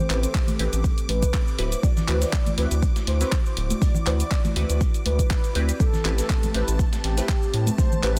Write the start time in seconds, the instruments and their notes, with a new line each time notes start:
Already playing: analog synth pad A3 C4 G4 A4, soft synth lead C5, string machine D6
0.10 analog synth bass A1, synth stab C4 E4 G4 B4, clap, closed hi-hat, open hi-hat
0.23 soft synth lead C5, closed hi-hat, cabasa
0.35 kick, snare, clap, closed hi-hat, cabasa
0.47 closed hi-hat, high conga, low conga, cabasa
0.59 analog synth bass A1, synth stab C4 E4 G4 B4, closed hi-hat, open hi-hat
0.73 analog synth bass A1, closed hi-hat, cabasa
0.84 kick, closed hi-hat, cabasa
0.98 closed hi-hat, cabasa
1.08 analog synth bass A1, soft synth lead B4, closed hi-hat, open hi-hat, high conga
1.22 kick, closed hi-hat, cabasa
1.34 kick, snare, clap, closed hi-hat, cabasa
1.48 cabasa
1.58 analog synth bass D1, synth stab C4 E4 F#4 B4, analog synth pad E4 F#4, closed hi-hat, open hi-hat
1.72 closed hi-hat, cabasa
1.83 soft synth lead D5, kick, closed hi-hat, cabasa
1.97 snare, low conga, cabasa
2.08 analog synth bass D2, synth stab C4 E4 F#4 B4, clap, closed hi-hat, open hi-hat
2.22 soft synth lead D5, snare, closed hi-hat, cabasa
2.33 kick, snare, clap, closed hi-hat, cabasa
2.46 closed hi-hat, high conga, low conga, cabasa
2.58 analog synth bass D2, synth stab C4 E4 F#4 B4, snare, closed hi-hat, open hi-hat
2.71 analog synth bass D2, closed hi-hat, cabasa
2.83 kick, closed hi-hat, cabasa
2.96 snare, closed hi-hat, high conga, cabasa
3.07 analog synth bass D2, soft synth lead C5, snare, closed hi-hat, open hi-hat
3.21 synth stab C4 E4 F#4 B4, snare, closed hi-hat, cabasa
3.32 kick, snare, clap, closed hi-hat, cabasa
3.46 cabasa
3.57 analog synth bass D1, analog synth pad D5, closed hi-hat, open hi-hat
3.70 closed hi-hat, high conga, cabasa
3.82 soft synth lead D5, kick, open hi-hat, cabasa
3.94 low conga, cabasa
4.06 analog synth bass D2, synth stab C4 E4 F#4 B4, clap, closed hi-hat, open hi-hat
4.20 soft synth lead D5, closed hi-hat, cabasa
4.31 kick, snare, clap, closed hi-hat, cabasa
4.44 closed hi-hat, high conga, low conga, cabasa
4.56 analog synth bass D2, synth stab C4 E4 F#4 B4, closed hi-hat, open hi-hat
4.70 analog synth bass D2, closed hi-hat, cabasa
4.81 kick, closed hi-hat, cabasa
4.94 closed hi-hat, cabasa
5.06 analog synth bass D2, soft synth lead B4, closed hi-hat, open hi-hat, high conga
5.19 kick, closed hi-hat, cabasa
5.30 kick, snare, clap, closed hi-hat, cabasa
5.44 closed hi-hat, cabasa
5.55 analog synth bass D2, synth stab C4 E4 G4 B4, closed hi-hat, open hi-hat
5.69 closed hi-hat, cabasa
5.80 analog synth pad A3 C4 G4 B4, soft synth lead A4, string machine A5, kick, closed hi-hat, cabasa
5.93 snare, low conga, cabasa
6.05 analog synth bass A1, synth stab C4 E4 G4 B4, clap, closed hi-hat, open hi-hat
6.18 soft synth lead A4, snare, closed hi-hat, cabasa
6.30 kick, snare, clap, closed hi-hat, cabasa
6.43 closed hi-hat, high conga, low conga, cabasa
6.54 analog synth bass A1, synth stab C4 E4 G4 B4, snare, closed hi-hat, open hi-hat
6.68 analog synth bass A1, closed hi-hat, cabasa
6.79 kick, closed hi-hat, cabasa
6.93 snare, closed hi-hat, high conga, cabasa
7.04 analog synth bass A1, soft synth lead G4, snare, closed hi-hat, open hi-hat
7.17 synth stab C4 E4 G4 B4, snare, closed hi-hat, cabasa
7.29 kick, snare, clap, closed hi-hat, cabasa
7.43 cabasa
7.54 analog synth bass A2, closed hi-hat, open hi-hat
7.67 closed hi-hat, high conga, cabasa
7.78 soft synth lead C5, kick, open hi-hat, cabasa
7.92 low conga, cabasa
8.03 analog synth bass A1, synth stab C4 E4 G4 B4, clap, closed hi-hat, open hi-hat